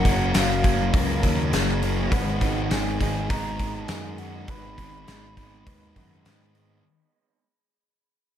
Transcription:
Already playing: F#2 C#3 A#4 F#5
0.04 F#1 C#3 F#3 A#3 C#4, kick, open hi-hat
0.08 F#3
0.34 F#1 F#2 C#3 F#3 A#3 F#4 F5, snare, open hi-hat
0.38 C#4
0.63 C#3 F#3 A#3 C#4, kick, open hi-hat
0.67 F#3
0.93 C#2 F#2 C#3 F#3 A#3 C#4 A#4, kick, open hi-hat
1.22 D#2 C#3 F#3 A#3 C#4, kick, open hi-hat
1.26 F#3
1.51 F#1 F#2 C#3 F#3 A#3 G#4, snare, open hi-hat
1.55 C#4
1.69 snare
1.82 C#3 F#3 A#3 C#4, open hi-hat
2.11 G#1 G#2 D#3 G#3 B3 D#4 B4 F#5, kick, open hi-hat
2.40 D#3 G#3 B3 D#4, kick, open hi-hat
2.70 G#1 G#2 D#3 G#3 B3 D#4 G#4 G#5, snare, open hi-hat
3.00 G#1 D#3 G#3 B3 D#4 G#5, kick, open hi-hat
3.29 G#1 G#2 D#3 G#3 B3 D#4 B4 A#5, kick, open hi-hat
3.59 D#3 G#3 B3 D#4, kick, open hi-hat
3.74 G#5
3.88 F#2 G#2 D#3 G#3 B3 D#4 G#4, snare, open hi-hat
4.18 D#3 G#3 B3 D#4 F#5, open hi-hat
4.48 G#1 G#2 D#3 G#3 B3 D#4 B4 B5, kick, open hi-hat
4.78 G#1 D#3 G#3 B3 D#4, kick, open hi-hat
5.07 G#1 G#2 D#3 G#3 B3 D#4 G#4, snare, open hi-hat
5.37 D#3 G#3 B3 D#4, kick, open hi-hat
5.66 D#2 G#2 D#3 G#3 B3 D#4 B4, kick, open hi-hat
5.96 F#2 D#3 G#3 B3 D#4, kick, open hi-hat
6.25 G#2 D#3 G#3 B3 D#4 G#4, snare, open hi-hat
6.41 snare
6.55 D#3 G#3 B3 D#4, open hi-hat

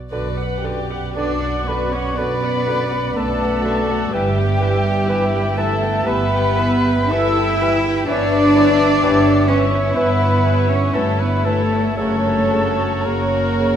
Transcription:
0.12 B1 F#2 D3 B3 F#4 B4 D5
0.38 B4 F#5
0.64 D3 F#4 G4 B4 D5
0.90 B4 F#5
1.16 B1 D3 D4 F#4 B4 D5 D6
1.41 B4 F#5
1.68 D3 B3 F#4 B4 D5 B5
1.92 C#4 B4 C#5 F#5 C#6
2.17 B1 D3 B3 F#4 B4 D5 B5
2.42 B4 F#5
2.66 D3 F#4 B4 D5
2.91 B4 F#5
3.15 B1 D3 A3 F#4 A4 B4 D5 A5
3.41 B4 F#5
3.64 D3 F#4 B4 D5
3.89 B4 F#5
4.12 G1 G2 E3 G3 B3 G4 B4 E5 G5
4.37 B4 G5
4.60 E3 G4 B4 E5
4.84 B4 G5
5.07 G1 E3 E4 G4 B4 E5
5.33 B4 G5
5.57 E3 A3 G4 A4 B4 E5 A5
5.82 B4 G5
6.05 G1 E3 B3 G4 B4 E5 B5
6.32 B4 G5
6.57 E3 G4 B4 E5
6.85 B4 G5
7.10 G1 E3 E4 G4 A4 B4 E5 E6
7.36 B4 G5
7.60 E3 G4 B4 E5
7.85 B4 G5
8.08 G1 G2 E3 B3 D4 B4 C#5 D5 E5 D6
8.34 B4 C#5
8.56 E3 B4 C#5 E5
8.80 B4 C#5
9.03 G1 E3 G4 B4 C#5 E5
9.27 B4 C#5
9.48 E3 C#4 E4 B4 C#5 E5 C#6
9.72 B4 C#5
9.94 G1 E3 B3 B4 C#5 E5 B5
10.20 B4 C#5
10.45 E3 B4 C#5 E5
10.69 C#4 B4 C#5 C#6
10.93 G1 E3 A3 E4 A4 B4 C#5 E5 A5
11.18 B3 B4 C#5 B5
11.44 E3 A3 A4 B4 C#5 E5 A5
11.71 B4 C#5
11.95 F#1 C#3 A3 F#4 A4 A#4 C#5 A5
11.99 C#4
12.26 A#4 C#5
12.52 C#3 A#4 C#5
12.79 A#4 C#5
13.05 F#1 F#2 C#3 A#3 A#4 C#5 A#5
13.60 C#3 C#5

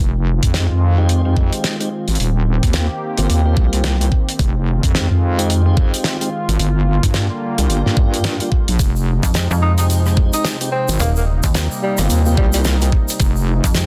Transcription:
0.00 F1 D#3 G#3 C4 F4
0.43 F2, kick, closed hi-hat
0.54 G#3 C4 D#4 G4, snare, closed hi-hat
0.70 F2
0.98 G#3 C4 D#4 G4
1.09 closed hi-hat
1.25 G#3 C4 D#4 G4
1.37 kick
1.53 closed hi-hat
1.64 snare, closed hi-hat
1.80 G#3 C4 D#4 G4, closed hi-hat
2.08 G#1, closed hi-hat
2.10 closed hi-hat
2.15 A#3, closed hi-hat
2.19 D#1 D#3 G4, closed hi-hat
2.63 D#2, kick, closed hi-hat
2.73 A#3 C4 F4 G4, snare, closed hi-hat
3.18 G1 A#3 C4 F4 G4, closed hi-hat
3.29 D#2, closed hi-hat
3.46 A#3 C4 F4 G4
3.57 C2, kick
3.73 closed hi-hat
3.84 snare, closed hi-hat
4.01 A#3 C4 F4 G4, closed hi-hat
4.12 kick
4.29 closed hi-hat
4.39 F1 G#3 F4, kick, closed hi-hat
4.83 F2, kick, closed hi-hat
4.95 G#3 C4 D#4 G4, snare, closed hi-hat
5.11 F2
5.38 G#3 C4 D#4 G4, closed hi-hat
5.50 closed hi-hat
5.66 G#3 C4 D#4 G4
5.77 kick
5.94 closed hi-hat
6.04 snare, closed hi-hat
6.21 G#3 C4 D#4 G4, closed hi-hat
6.48 G#1, closed hi-hat
6.59 G1 D3 G3 A#3, closed hi-hat
7.03 G2, kick, closed hi-hat
7.14 A#3 D4 F4 G4, snare, closed hi-hat
7.58 C2 A#3 D4 F4 G4, closed hi-hat
7.69 G1, closed hi-hat
7.86 G2 A#3 D4 F4 G4, snare
7.97 kick
8.14 closed hi-hat
8.24 snare, closed hi-hat
8.40 A#3 D4 F4 G4, closed hi-hat
8.52 kick
8.68 A#1, closed hi-hat
8.78 F1 C3 F3 G#3 D#4, kick, closed hi-hat, shaker
8.96 shaker
9.23 F2, kick, closed hi-hat, shaker
9.34 G#3 C4 D#4 G4, snare, closed hi-hat, shaker
9.51 F2, shaker
9.62 D#4
9.78 G#3 C4 D#4 G4, cross-stick, closed hi-hat, shaker
9.90 closed hi-hat, shaker
10.06 G#3 C4 D#4 G4, cross-stick, shaker
10.17 kick
10.33 D#4, closed hi-hat, shaker
10.45 snare, closed hi-hat, shaker
10.61 G#3 C4 D#4 G4, closed hi-hat, shaker
10.72 C4
10.88 G#1, closed hi-hat, shaker
10.99 D#1 G3 A#3, closed hi-hat, shaker
11.16 A#3, shaker
11.43 D#2, kick, closed hi-hat, shaker
11.54 A#3 C4 F4 G4, snare, closed hi-hat, shaker
11.71 shaker
11.83 G3
11.97 G1 A#3 C4 F4 G4, cross-stick, closed hi-hat, shaker
12.09 D#2, closed hi-hat, shaker
12.25 A#3 C4 F4 G4, shaker
12.37 C2 G3, kick
12.53 G3, closed hi-hat, shaker
12.64 snare, closed hi-hat, shaker
12.81 A#3 C4 F4 G4, closed hi-hat, shaker
12.92 kick
13.08 closed hi-hat, shaker
13.20 F1 F3 G#3, kick, closed hi-hat, shaker
13.36 shaker
13.64 F2, kick, closed hi-hat, shaker
13.74 G#3 C4 D#4 G4, snare, closed hi-hat, shaker

